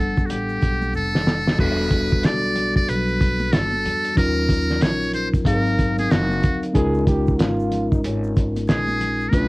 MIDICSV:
0, 0, Header, 1, 6, 480
1, 0, Start_track
1, 0, Tempo, 645161
1, 1183, Time_signature, 4, 2, 24, 8
1, 7055, End_track
2, 0, Start_track
2, 0, Title_t, "Muted trumpet"
2, 0, Program_c, 0, 59
2, 0, Note_on_c, 0, 69, 71
2, 193, Note_on_c, 0, 66, 46
2, 204, Note_off_c, 0, 69, 0
2, 223, Note_on_c, 0, 67, 80
2, 234, Note_off_c, 0, 66, 0
2, 703, Note_off_c, 0, 67, 0
2, 712, Note_on_c, 0, 69, 97
2, 1158, Note_off_c, 0, 69, 0
2, 1192, Note_on_c, 0, 71, 122
2, 1676, Note_on_c, 0, 74, 107
2, 1687, Note_off_c, 0, 71, 0
2, 2052, Note_off_c, 0, 74, 0
2, 2057, Note_on_c, 0, 74, 98
2, 2149, Note_on_c, 0, 71, 88
2, 2160, Note_off_c, 0, 74, 0
2, 2626, Note_on_c, 0, 69, 108
2, 2637, Note_off_c, 0, 71, 0
2, 3101, Note_off_c, 0, 69, 0
2, 3106, Note_on_c, 0, 70, 121
2, 3592, Note_on_c, 0, 73, 105
2, 3604, Note_off_c, 0, 70, 0
2, 3825, Note_off_c, 0, 73, 0
2, 3830, Note_on_c, 0, 72, 87
2, 3936, Note_off_c, 0, 72, 0
2, 4074, Note_on_c, 0, 70, 88
2, 4430, Note_off_c, 0, 70, 0
2, 4458, Note_on_c, 0, 68, 90
2, 4550, Note_on_c, 0, 66, 89
2, 4561, Note_off_c, 0, 68, 0
2, 4935, Note_off_c, 0, 66, 0
2, 6468, Note_on_c, 0, 68, 93
2, 6915, Note_on_c, 0, 70, 67
2, 6926, Note_off_c, 0, 68, 0
2, 6956, Note_on_c, 0, 71, 94
2, 6967, Note_off_c, 0, 70, 0
2, 7055, Note_off_c, 0, 71, 0
2, 7055, End_track
3, 0, Start_track
3, 0, Title_t, "Trombone"
3, 0, Program_c, 1, 57
3, 5019, Note_on_c, 1, 68, 125
3, 5244, Note_off_c, 1, 68, 0
3, 5261, Note_on_c, 1, 67, 102
3, 5501, Note_on_c, 1, 65, 94
3, 5512, Note_off_c, 1, 67, 0
3, 5891, Note_on_c, 1, 63, 84
3, 5902, Note_off_c, 1, 65, 0
3, 5977, Note_off_c, 1, 63, 0
3, 5981, Note_on_c, 1, 61, 69
3, 6343, Note_off_c, 1, 61, 0
3, 7055, End_track
4, 0, Start_track
4, 0, Title_t, "Tine electric piano"
4, 0, Program_c, 2, 4
4, 0, Note_on_c, 2, 55, 70
4, 0, Note_on_c, 2, 59, 52
4, 0, Note_on_c, 2, 62, 55
4, 0, Note_on_c, 2, 69, 71
4, 0, Note_on_c, 2, 78, 58
4, 1145, Note_off_c, 2, 55, 0
4, 1149, Note_off_c, 2, 59, 0
4, 1152, Note_off_c, 2, 62, 0
4, 1155, Note_off_c, 2, 78, 0
4, 1159, Note_off_c, 2, 69, 0
4, 1171, Note_on_c, 2, 55, 63
4, 1176, Note_on_c, 2, 59, 60
4, 1185, Note_on_c, 2, 62, 54
4, 1189, Note_on_c, 2, 66, 64
4, 1196, Note_on_c, 2, 69, 66
4, 3067, Note_off_c, 2, 55, 0
4, 3070, Note_off_c, 2, 59, 0
4, 3074, Note_off_c, 2, 62, 0
4, 3076, Note_off_c, 2, 66, 0
4, 3079, Note_off_c, 2, 69, 0
4, 3089, Note_on_c, 2, 54, 62
4, 3095, Note_on_c, 2, 61, 63
4, 3100, Note_on_c, 2, 63, 55
4, 3108, Note_on_c, 2, 65, 58
4, 3113, Note_on_c, 2, 70, 74
4, 4037, Note_off_c, 2, 54, 0
4, 4040, Note_off_c, 2, 61, 0
4, 4042, Note_off_c, 2, 63, 0
4, 4046, Note_off_c, 2, 65, 0
4, 4048, Note_on_c, 2, 54, 67
4, 4049, Note_off_c, 2, 70, 0
4, 4055, Note_on_c, 2, 60, 61
4, 4062, Note_on_c, 2, 63, 62
4, 4068, Note_on_c, 2, 77, 66
4, 4075, Note_on_c, 2, 68, 60
4, 4121, Note_on_c, 2, 70, 66
4, 4129, Note_off_c, 2, 68, 0
4, 4996, Note_off_c, 2, 54, 0
4, 5000, Note_off_c, 2, 60, 0
4, 5003, Note_off_c, 2, 63, 0
4, 5006, Note_off_c, 2, 77, 0
4, 5008, Note_on_c, 2, 56, 85
4, 5015, Note_on_c, 2, 61, 71
4, 5019, Note_on_c, 2, 63, 72
4, 5023, Note_off_c, 2, 70, 0
4, 5028, Note_on_c, 2, 65, 68
4, 5032, Note_on_c, 2, 70, 81
4, 6906, Note_off_c, 2, 56, 0
4, 6909, Note_off_c, 2, 61, 0
4, 6911, Note_off_c, 2, 63, 0
4, 6916, Note_off_c, 2, 65, 0
4, 6918, Note_off_c, 2, 70, 0
4, 6927, Note_on_c, 2, 57, 63
4, 6934, Note_on_c, 2, 61, 54
4, 6939, Note_on_c, 2, 62, 60
4, 6947, Note_on_c, 2, 65, 61
4, 6952, Note_on_c, 2, 71, 65
4, 7055, Note_off_c, 2, 57, 0
4, 7055, Note_off_c, 2, 61, 0
4, 7055, Note_off_c, 2, 62, 0
4, 7055, Note_off_c, 2, 65, 0
4, 7055, Note_off_c, 2, 71, 0
4, 7055, End_track
5, 0, Start_track
5, 0, Title_t, "Upright bass"
5, 0, Program_c, 3, 32
5, 0, Note_on_c, 3, 31, 76
5, 114, Note_off_c, 3, 31, 0
5, 225, Note_on_c, 3, 33, 88
5, 452, Note_off_c, 3, 33, 0
5, 468, Note_on_c, 3, 35, 87
5, 693, Note_off_c, 3, 35, 0
5, 704, Note_on_c, 3, 29, 91
5, 1159, Note_off_c, 3, 29, 0
5, 1181, Note_on_c, 3, 28, 106
5, 1638, Note_off_c, 3, 28, 0
5, 1664, Note_on_c, 3, 35, 77
5, 2119, Note_off_c, 3, 35, 0
5, 2143, Note_on_c, 3, 35, 103
5, 2599, Note_off_c, 3, 35, 0
5, 2626, Note_on_c, 3, 31, 82
5, 2852, Note_off_c, 3, 31, 0
5, 2868, Note_on_c, 3, 40, 86
5, 3093, Note_off_c, 3, 40, 0
5, 3103, Note_on_c, 3, 39, 108
5, 3559, Note_off_c, 3, 39, 0
5, 3585, Note_on_c, 3, 34, 72
5, 4040, Note_off_c, 3, 34, 0
5, 4058, Note_on_c, 3, 32, 106
5, 4516, Note_off_c, 3, 32, 0
5, 4548, Note_on_c, 3, 30, 100
5, 4774, Note_off_c, 3, 30, 0
5, 4789, Note_on_c, 3, 38, 86
5, 5014, Note_off_c, 3, 38, 0
5, 5022, Note_on_c, 3, 37, 102
5, 5478, Note_off_c, 3, 37, 0
5, 5504, Note_on_c, 3, 32, 83
5, 5959, Note_off_c, 3, 32, 0
5, 5987, Note_on_c, 3, 32, 97
5, 6441, Note_off_c, 3, 32, 0
5, 6468, Note_on_c, 3, 34, 88
5, 6922, Note_off_c, 3, 34, 0
5, 6942, Note_on_c, 3, 35, 106
5, 7055, Note_off_c, 3, 35, 0
5, 7055, End_track
6, 0, Start_track
6, 0, Title_t, "Drums"
6, 124, Note_on_c, 9, 82, 51
6, 131, Note_on_c, 9, 36, 79
6, 199, Note_off_c, 9, 82, 0
6, 205, Note_off_c, 9, 36, 0
6, 219, Note_on_c, 9, 82, 63
6, 224, Note_on_c, 9, 42, 76
6, 293, Note_off_c, 9, 82, 0
6, 298, Note_off_c, 9, 42, 0
6, 365, Note_on_c, 9, 82, 39
6, 439, Note_off_c, 9, 82, 0
6, 457, Note_on_c, 9, 82, 44
6, 465, Note_on_c, 9, 36, 80
6, 466, Note_on_c, 9, 42, 73
6, 532, Note_off_c, 9, 82, 0
6, 540, Note_off_c, 9, 36, 0
6, 541, Note_off_c, 9, 42, 0
6, 608, Note_on_c, 9, 63, 63
6, 608, Note_on_c, 9, 82, 42
6, 683, Note_off_c, 9, 63, 0
6, 683, Note_off_c, 9, 82, 0
6, 697, Note_on_c, 9, 82, 50
6, 771, Note_off_c, 9, 82, 0
6, 848, Note_on_c, 9, 82, 45
6, 856, Note_on_c, 9, 38, 60
6, 922, Note_off_c, 9, 82, 0
6, 930, Note_off_c, 9, 38, 0
6, 942, Note_on_c, 9, 64, 64
6, 942, Note_on_c, 9, 82, 46
6, 945, Note_on_c, 9, 38, 84
6, 1016, Note_off_c, 9, 64, 0
6, 1016, Note_off_c, 9, 82, 0
6, 1019, Note_off_c, 9, 38, 0
6, 1089, Note_on_c, 9, 82, 47
6, 1096, Note_on_c, 9, 38, 79
6, 1164, Note_off_c, 9, 82, 0
6, 1171, Note_off_c, 9, 38, 0
6, 1180, Note_on_c, 9, 36, 107
6, 1181, Note_on_c, 9, 49, 90
6, 1184, Note_on_c, 9, 82, 52
6, 1255, Note_off_c, 9, 36, 0
6, 1256, Note_off_c, 9, 49, 0
6, 1259, Note_off_c, 9, 82, 0
6, 1328, Note_on_c, 9, 82, 42
6, 1403, Note_off_c, 9, 82, 0
6, 1419, Note_on_c, 9, 36, 96
6, 1420, Note_on_c, 9, 42, 74
6, 1422, Note_on_c, 9, 82, 42
6, 1493, Note_off_c, 9, 36, 0
6, 1494, Note_off_c, 9, 42, 0
6, 1496, Note_off_c, 9, 82, 0
6, 1569, Note_on_c, 9, 82, 44
6, 1579, Note_on_c, 9, 36, 80
6, 1644, Note_off_c, 9, 82, 0
6, 1653, Note_off_c, 9, 36, 0
6, 1661, Note_on_c, 9, 42, 99
6, 1661, Note_on_c, 9, 82, 57
6, 1670, Note_on_c, 9, 38, 110
6, 1735, Note_off_c, 9, 42, 0
6, 1735, Note_off_c, 9, 82, 0
6, 1744, Note_off_c, 9, 38, 0
6, 1811, Note_on_c, 9, 82, 48
6, 1886, Note_off_c, 9, 82, 0
6, 1899, Note_on_c, 9, 64, 61
6, 1899, Note_on_c, 9, 82, 39
6, 1902, Note_on_c, 9, 42, 70
6, 1973, Note_off_c, 9, 64, 0
6, 1973, Note_off_c, 9, 82, 0
6, 1976, Note_off_c, 9, 42, 0
6, 2050, Note_on_c, 9, 82, 49
6, 2051, Note_on_c, 9, 36, 88
6, 2124, Note_off_c, 9, 82, 0
6, 2126, Note_off_c, 9, 36, 0
6, 2143, Note_on_c, 9, 82, 68
6, 2146, Note_on_c, 9, 42, 80
6, 2218, Note_off_c, 9, 82, 0
6, 2221, Note_off_c, 9, 42, 0
6, 2288, Note_on_c, 9, 82, 47
6, 2362, Note_off_c, 9, 82, 0
6, 2381, Note_on_c, 9, 82, 42
6, 2385, Note_on_c, 9, 36, 84
6, 2387, Note_on_c, 9, 42, 76
6, 2455, Note_off_c, 9, 82, 0
6, 2460, Note_off_c, 9, 36, 0
6, 2462, Note_off_c, 9, 42, 0
6, 2528, Note_on_c, 9, 63, 69
6, 2528, Note_on_c, 9, 82, 50
6, 2602, Note_off_c, 9, 63, 0
6, 2602, Note_off_c, 9, 82, 0
6, 2617, Note_on_c, 9, 82, 54
6, 2623, Note_on_c, 9, 42, 95
6, 2625, Note_on_c, 9, 38, 100
6, 2691, Note_off_c, 9, 82, 0
6, 2697, Note_off_c, 9, 42, 0
6, 2699, Note_off_c, 9, 38, 0
6, 2772, Note_on_c, 9, 63, 59
6, 2772, Note_on_c, 9, 82, 40
6, 2846, Note_off_c, 9, 63, 0
6, 2846, Note_off_c, 9, 82, 0
6, 2866, Note_on_c, 9, 42, 72
6, 2866, Note_on_c, 9, 64, 63
6, 2866, Note_on_c, 9, 82, 48
6, 2940, Note_off_c, 9, 42, 0
6, 2940, Note_off_c, 9, 64, 0
6, 2940, Note_off_c, 9, 82, 0
6, 3008, Note_on_c, 9, 82, 46
6, 3009, Note_on_c, 9, 42, 56
6, 3082, Note_off_c, 9, 82, 0
6, 3083, Note_off_c, 9, 42, 0
6, 3101, Note_on_c, 9, 36, 106
6, 3102, Note_on_c, 9, 42, 100
6, 3102, Note_on_c, 9, 82, 61
6, 3176, Note_off_c, 9, 36, 0
6, 3176, Note_off_c, 9, 82, 0
6, 3177, Note_off_c, 9, 42, 0
6, 3246, Note_on_c, 9, 82, 36
6, 3320, Note_off_c, 9, 82, 0
6, 3340, Note_on_c, 9, 36, 92
6, 3342, Note_on_c, 9, 42, 75
6, 3343, Note_on_c, 9, 82, 48
6, 3414, Note_off_c, 9, 36, 0
6, 3416, Note_off_c, 9, 42, 0
6, 3417, Note_off_c, 9, 82, 0
6, 3487, Note_on_c, 9, 82, 49
6, 3499, Note_on_c, 9, 38, 35
6, 3562, Note_off_c, 9, 82, 0
6, 3574, Note_off_c, 9, 38, 0
6, 3580, Note_on_c, 9, 42, 91
6, 3582, Note_on_c, 9, 82, 63
6, 3589, Note_on_c, 9, 38, 118
6, 3654, Note_off_c, 9, 42, 0
6, 3656, Note_off_c, 9, 82, 0
6, 3663, Note_off_c, 9, 38, 0
6, 3731, Note_on_c, 9, 82, 49
6, 3805, Note_off_c, 9, 82, 0
6, 3820, Note_on_c, 9, 42, 66
6, 3822, Note_on_c, 9, 64, 60
6, 3822, Note_on_c, 9, 82, 41
6, 3895, Note_off_c, 9, 42, 0
6, 3896, Note_off_c, 9, 64, 0
6, 3896, Note_off_c, 9, 82, 0
6, 3971, Note_on_c, 9, 36, 80
6, 3973, Note_on_c, 9, 42, 51
6, 3976, Note_on_c, 9, 82, 57
6, 4045, Note_off_c, 9, 36, 0
6, 4047, Note_off_c, 9, 42, 0
6, 4051, Note_off_c, 9, 82, 0
6, 4056, Note_on_c, 9, 36, 91
6, 4066, Note_on_c, 9, 42, 88
6, 4070, Note_on_c, 9, 82, 62
6, 4131, Note_off_c, 9, 36, 0
6, 4140, Note_off_c, 9, 42, 0
6, 4145, Note_off_c, 9, 82, 0
6, 4214, Note_on_c, 9, 82, 45
6, 4288, Note_off_c, 9, 82, 0
6, 4303, Note_on_c, 9, 82, 46
6, 4306, Note_on_c, 9, 36, 88
6, 4307, Note_on_c, 9, 42, 72
6, 4377, Note_off_c, 9, 82, 0
6, 4381, Note_off_c, 9, 36, 0
6, 4382, Note_off_c, 9, 42, 0
6, 4449, Note_on_c, 9, 63, 62
6, 4449, Note_on_c, 9, 82, 44
6, 4453, Note_on_c, 9, 42, 51
6, 4524, Note_off_c, 9, 63, 0
6, 4524, Note_off_c, 9, 82, 0
6, 4528, Note_off_c, 9, 42, 0
6, 4538, Note_on_c, 9, 82, 54
6, 4548, Note_on_c, 9, 42, 74
6, 4549, Note_on_c, 9, 38, 93
6, 4613, Note_off_c, 9, 82, 0
6, 4622, Note_off_c, 9, 42, 0
6, 4624, Note_off_c, 9, 38, 0
6, 4691, Note_on_c, 9, 63, 59
6, 4691, Note_on_c, 9, 82, 42
6, 4765, Note_off_c, 9, 63, 0
6, 4765, Note_off_c, 9, 82, 0
6, 4782, Note_on_c, 9, 64, 68
6, 4782, Note_on_c, 9, 82, 54
6, 4787, Note_on_c, 9, 42, 76
6, 4790, Note_on_c, 9, 36, 85
6, 4856, Note_off_c, 9, 64, 0
6, 4856, Note_off_c, 9, 82, 0
6, 4862, Note_off_c, 9, 42, 0
6, 4864, Note_off_c, 9, 36, 0
6, 4930, Note_on_c, 9, 82, 44
6, 4933, Note_on_c, 9, 42, 51
6, 5005, Note_off_c, 9, 82, 0
6, 5007, Note_off_c, 9, 42, 0
6, 5021, Note_on_c, 9, 36, 97
6, 5022, Note_on_c, 9, 42, 85
6, 5022, Note_on_c, 9, 82, 48
6, 5095, Note_off_c, 9, 36, 0
6, 5096, Note_off_c, 9, 42, 0
6, 5096, Note_off_c, 9, 82, 0
6, 5164, Note_on_c, 9, 82, 36
6, 5239, Note_off_c, 9, 82, 0
6, 5259, Note_on_c, 9, 36, 101
6, 5259, Note_on_c, 9, 42, 73
6, 5261, Note_on_c, 9, 82, 46
6, 5333, Note_off_c, 9, 36, 0
6, 5334, Note_off_c, 9, 42, 0
6, 5336, Note_off_c, 9, 82, 0
6, 5407, Note_on_c, 9, 82, 46
6, 5418, Note_on_c, 9, 36, 76
6, 5481, Note_off_c, 9, 82, 0
6, 5493, Note_off_c, 9, 36, 0
6, 5500, Note_on_c, 9, 42, 85
6, 5500, Note_on_c, 9, 82, 62
6, 5509, Note_on_c, 9, 38, 109
6, 5574, Note_off_c, 9, 42, 0
6, 5575, Note_off_c, 9, 82, 0
6, 5583, Note_off_c, 9, 38, 0
6, 5649, Note_on_c, 9, 82, 45
6, 5724, Note_off_c, 9, 82, 0
6, 5740, Note_on_c, 9, 64, 59
6, 5740, Note_on_c, 9, 82, 44
6, 5741, Note_on_c, 9, 42, 67
6, 5815, Note_off_c, 9, 42, 0
6, 5815, Note_off_c, 9, 64, 0
6, 5815, Note_off_c, 9, 82, 0
6, 5892, Note_on_c, 9, 36, 93
6, 5893, Note_on_c, 9, 82, 54
6, 5966, Note_off_c, 9, 36, 0
6, 5967, Note_off_c, 9, 82, 0
6, 5981, Note_on_c, 9, 82, 66
6, 5984, Note_on_c, 9, 42, 85
6, 6055, Note_off_c, 9, 82, 0
6, 6059, Note_off_c, 9, 42, 0
6, 6128, Note_on_c, 9, 82, 48
6, 6202, Note_off_c, 9, 82, 0
6, 6220, Note_on_c, 9, 82, 47
6, 6226, Note_on_c, 9, 36, 94
6, 6227, Note_on_c, 9, 42, 77
6, 6294, Note_off_c, 9, 82, 0
6, 6300, Note_off_c, 9, 36, 0
6, 6302, Note_off_c, 9, 42, 0
6, 6370, Note_on_c, 9, 63, 65
6, 6370, Note_on_c, 9, 82, 47
6, 6373, Note_on_c, 9, 42, 51
6, 6445, Note_off_c, 9, 63, 0
6, 6445, Note_off_c, 9, 82, 0
6, 6447, Note_off_c, 9, 42, 0
6, 6456, Note_on_c, 9, 82, 55
6, 6464, Note_on_c, 9, 42, 82
6, 6466, Note_on_c, 9, 38, 96
6, 6530, Note_off_c, 9, 82, 0
6, 6538, Note_off_c, 9, 42, 0
6, 6540, Note_off_c, 9, 38, 0
6, 6609, Note_on_c, 9, 63, 59
6, 6609, Note_on_c, 9, 82, 44
6, 6684, Note_off_c, 9, 63, 0
6, 6684, Note_off_c, 9, 82, 0
6, 6702, Note_on_c, 9, 64, 68
6, 6702, Note_on_c, 9, 82, 48
6, 6704, Note_on_c, 9, 42, 70
6, 6776, Note_off_c, 9, 64, 0
6, 6776, Note_off_c, 9, 82, 0
6, 6778, Note_off_c, 9, 42, 0
6, 6847, Note_on_c, 9, 82, 47
6, 6922, Note_off_c, 9, 82, 0
6, 6941, Note_on_c, 9, 36, 91
6, 6941, Note_on_c, 9, 82, 54
6, 6942, Note_on_c, 9, 42, 85
6, 7015, Note_off_c, 9, 36, 0
6, 7015, Note_off_c, 9, 82, 0
6, 7017, Note_off_c, 9, 42, 0
6, 7055, End_track
0, 0, End_of_file